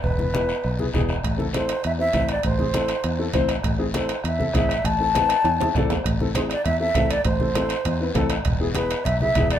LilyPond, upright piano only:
\new Staff \with { instrumentName = "Upright piano" } { \time 4/4 \key a \minor \tempo 4 = 200 r8 <b e' b'>8 <b e' b'>8 r4 <b e' gis'>8 <b e' gis'>8 r8 | r8 <c' e' a'>8 <c' e' a'>8 r4 <c' e' c''>8 <c' e' c''>8 r8 | r8 <c' e' gis'>8 <c' e' a'>8 r4 <c' e' a'>8 <c' e' c''>8 r8 | r8 <c' e' gis'>8 <c' e' a'>8 r4 <c' e' a'>8 <c' e' gis'>8 r8 |
r8 <c' e' a'>8 <c' e' b'>8 a''8 gis''8 <c' e' gis' e''>8 <c' e' a' d''>8 c''8 | r8 <c' e' a'>8 <c' e' gis'>8 r4 <c' e' a'>8 <c' e' a'>8 r8 | r8 <c' e' a'>8 <c' e' a'>8 r4 <c' e' b'>8 <c' e' a'>8 r8 | r8 <b e' gis'>8 <b e' gis'>8 r4 <b e' gis'>8 <b e' gis'>8 r8 | }